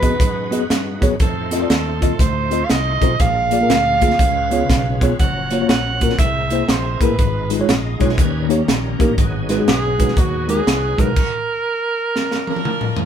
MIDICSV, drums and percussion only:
0, 0, Header, 1, 2, 480
1, 0, Start_track
1, 0, Tempo, 498339
1, 1158, Time_signature, 4, 2, 24, 8
1, 12572, End_track
2, 0, Start_track
2, 0, Title_t, "Drums"
2, 25, Note_on_c, 9, 36, 84
2, 25, Note_on_c, 9, 42, 58
2, 121, Note_off_c, 9, 42, 0
2, 122, Note_off_c, 9, 36, 0
2, 191, Note_on_c, 9, 36, 108
2, 199, Note_on_c, 9, 42, 83
2, 288, Note_off_c, 9, 36, 0
2, 296, Note_off_c, 9, 42, 0
2, 502, Note_on_c, 9, 42, 60
2, 599, Note_off_c, 9, 42, 0
2, 677, Note_on_c, 9, 38, 84
2, 682, Note_on_c, 9, 42, 92
2, 773, Note_off_c, 9, 38, 0
2, 778, Note_off_c, 9, 42, 0
2, 982, Note_on_c, 9, 36, 90
2, 987, Note_on_c, 9, 42, 64
2, 1079, Note_off_c, 9, 36, 0
2, 1083, Note_off_c, 9, 42, 0
2, 1152, Note_on_c, 9, 42, 74
2, 1157, Note_on_c, 9, 36, 97
2, 1249, Note_off_c, 9, 42, 0
2, 1253, Note_off_c, 9, 36, 0
2, 1457, Note_on_c, 9, 42, 68
2, 1462, Note_on_c, 9, 38, 26
2, 1553, Note_off_c, 9, 42, 0
2, 1558, Note_off_c, 9, 38, 0
2, 1637, Note_on_c, 9, 42, 68
2, 1638, Note_on_c, 9, 38, 93
2, 1733, Note_off_c, 9, 42, 0
2, 1735, Note_off_c, 9, 38, 0
2, 1946, Note_on_c, 9, 42, 61
2, 1947, Note_on_c, 9, 36, 75
2, 2042, Note_off_c, 9, 42, 0
2, 2043, Note_off_c, 9, 36, 0
2, 2113, Note_on_c, 9, 36, 105
2, 2120, Note_on_c, 9, 42, 85
2, 2209, Note_off_c, 9, 36, 0
2, 2216, Note_off_c, 9, 42, 0
2, 2419, Note_on_c, 9, 42, 58
2, 2516, Note_off_c, 9, 42, 0
2, 2596, Note_on_c, 9, 38, 89
2, 2601, Note_on_c, 9, 42, 86
2, 2692, Note_off_c, 9, 38, 0
2, 2698, Note_off_c, 9, 42, 0
2, 2905, Note_on_c, 9, 36, 86
2, 2909, Note_on_c, 9, 42, 59
2, 3002, Note_off_c, 9, 36, 0
2, 3005, Note_off_c, 9, 42, 0
2, 3079, Note_on_c, 9, 42, 77
2, 3081, Note_on_c, 9, 36, 93
2, 3175, Note_off_c, 9, 42, 0
2, 3177, Note_off_c, 9, 36, 0
2, 3382, Note_on_c, 9, 42, 68
2, 3478, Note_off_c, 9, 42, 0
2, 3562, Note_on_c, 9, 42, 73
2, 3564, Note_on_c, 9, 38, 104
2, 3658, Note_off_c, 9, 42, 0
2, 3660, Note_off_c, 9, 38, 0
2, 3867, Note_on_c, 9, 42, 57
2, 3872, Note_on_c, 9, 36, 80
2, 3952, Note_on_c, 9, 38, 35
2, 3963, Note_off_c, 9, 42, 0
2, 3968, Note_off_c, 9, 36, 0
2, 4039, Note_on_c, 9, 36, 115
2, 4048, Note_off_c, 9, 38, 0
2, 4048, Note_on_c, 9, 42, 89
2, 4135, Note_off_c, 9, 36, 0
2, 4144, Note_off_c, 9, 42, 0
2, 4346, Note_on_c, 9, 42, 56
2, 4442, Note_off_c, 9, 42, 0
2, 4523, Note_on_c, 9, 36, 93
2, 4523, Note_on_c, 9, 38, 80
2, 4528, Note_on_c, 9, 42, 83
2, 4619, Note_off_c, 9, 36, 0
2, 4619, Note_off_c, 9, 38, 0
2, 4624, Note_off_c, 9, 42, 0
2, 4829, Note_on_c, 9, 36, 84
2, 4832, Note_on_c, 9, 42, 59
2, 4925, Note_off_c, 9, 36, 0
2, 4928, Note_off_c, 9, 42, 0
2, 5003, Note_on_c, 9, 42, 71
2, 5005, Note_on_c, 9, 36, 102
2, 5099, Note_off_c, 9, 42, 0
2, 5101, Note_off_c, 9, 36, 0
2, 5302, Note_on_c, 9, 42, 70
2, 5399, Note_off_c, 9, 42, 0
2, 5481, Note_on_c, 9, 42, 63
2, 5483, Note_on_c, 9, 38, 101
2, 5577, Note_off_c, 9, 42, 0
2, 5579, Note_off_c, 9, 38, 0
2, 5790, Note_on_c, 9, 42, 61
2, 5793, Note_on_c, 9, 36, 72
2, 5872, Note_on_c, 9, 38, 34
2, 5886, Note_off_c, 9, 42, 0
2, 5889, Note_off_c, 9, 36, 0
2, 5958, Note_on_c, 9, 36, 116
2, 5965, Note_on_c, 9, 42, 91
2, 5969, Note_off_c, 9, 38, 0
2, 6055, Note_off_c, 9, 36, 0
2, 6062, Note_off_c, 9, 42, 0
2, 6264, Note_on_c, 9, 42, 60
2, 6360, Note_off_c, 9, 42, 0
2, 6440, Note_on_c, 9, 38, 91
2, 6445, Note_on_c, 9, 42, 90
2, 6536, Note_off_c, 9, 38, 0
2, 6541, Note_off_c, 9, 42, 0
2, 6748, Note_on_c, 9, 36, 86
2, 6754, Note_on_c, 9, 42, 61
2, 6845, Note_off_c, 9, 36, 0
2, 6850, Note_off_c, 9, 42, 0
2, 6922, Note_on_c, 9, 42, 72
2, 6923, Note_on_c, 9, 36, 98
2, 7018, Note_off_c, 9, 42, 0
2, 7020, Note_off_c, 9, 36, 0
2, 7225, Note_on_c, 9, 42, 67
2, 7321, Note_off_c, 9, 42, 0
2, 7405, Note_on_c, 9, 42, 66
2, 7407, Note_on_c, 9, 38, 103
2, 7501, Note_off_c, 9, 42, 0
2, 7503, Note_off_c, 9, 38, 0
2, 7709, Note_on_c, 9, 42, 54
2, 7712, Note_on_c, 9, 36, 75
2, 7792, Note_on_c, 9, 38, 29
2, 7805, Note_off_c, 9, 42, 0
2, 7809, Note_off_c, 9, 36, 0
2, 7879, Note_on_c, 9, 36, 107
2, 7889, Note_off_c, 9, 38, 0
2, 7889, Note_on_c, 9, 42, 94
2, 7975, Note_off_c, 9, 36, 0
2, 7985, Note_off_c, 9, 42, 0
2, 8188, Note_on_c, 9, 42, 59
2, 8285, Note_off_c, 9, 42, 0
2, 8364, Note_on_c, 9, 38, 90
2, 8369, Note_on_c, 9, 42, 88
2, 8461, Note_off_c, 9, 38, 0
2, 8466, Note_off_c, 9, 42, 0
2, 8668, Note_on_c, 9, 36, 94
2, 8676, Note_on_c, 9, 42, 60
2, 8765, Note_off_c, 9, 36, 0
2, 8772, Note_off_c, 9, 42, 0
2, 8841, Note_on_c, 9, 42, 68
2, 8842, Note_on_c, 9, 36, 100
2, 8938, Note_off_c, 9, 36, 0
2, 8938, Note_off_c, 9, 42, 0
2, 9141, Note_on_c, 9, 42, 75
2, 9146, Note_on_c, 9, 38, 26
2, 9238, Note_off_c, 9, 42, 0
2, 9243, Note_off_c, 9, 38, 0
2, 9321, Note_on_c, 9, 42, 69
2, 9323, Note_on_c, 9, 38, 105
2, 9417, Note_off_c, 9, 42, 0
2, 9419, Note_off_c, 9, 38, 0
2, 9628, Note_on_c, 9, 42, 59
2, 9629, Note_on_c, 9, 36, 81
2, 9711, Note_on_c, 9, 38, 35
2, 9724, Note_off_c, 9, 42, 0
2, 9726, Note_off_c, 9, 36, 0
2, 9794, Note_on_c, 9, 36, 116
2, 9803, Note_on_c, 9, 42, 88
2, 9807, Note_off_c, 9, 38, 0
2, 9890, Note_off_c, 9, 36, 0
2, 9900, Note_off_c, 9, 42, 0
2, 10102, Note_on_c, 9, 42, 61
2, 10199, Note_off_c, 9, 42, 0
2, 10280, Note_on_c, 9, 38, 92
2, 10285, Note_on_c, 9, 42, 91
2, 10376, Note_off_c, 9, 38, 0
2, 10381, Note_off_c, 9, 42, 0
2, 10580, Note_on_c, 9, 36, 93
2, 10586, Note_on_c, 9, 42, 60
2, 10677, Note_off_c, 9, 36, 0
2, 10683, Note_off_c, 9, 42, 0
2, 10753, Note_on_c, 9, 49, 73
2, 10754, Note_on_c, 9, 36, 98
2, 10849, Note_off_c, 9, 49, 0
2, 10850, Note_off_c, 9, 36, 0
2, 11709, Note_on_c, 9, 38, 53
2, 11806, Note_off_c, 9, 38, 0
2, 11861, Note_on_c, 9, 38, 49
2, 11957, Note_off_c, 9, 38, 0
2, 12014, Note_on_c, 9, 48, 60
2, 12101, Note_off_c, 9, 48, 0
2, 12101, Note_on_c, 9, 48, 58
2, 12187, Note_on_c, 9, 47, 78
2, 12197, Note_off_c, 9, 48, 0
2, 12284, Note_off_c, 9, 47, 0
2, 12338, Note_on_c, 9, 45, 66
2, 12435, Note_off_c, 9, 45, 0
2, 12488, Note_on_c, 9, 43, 93
2, 12572, Note_off_c, 9, 43, 0
2, 12572, End_track
0, 0, End_of_file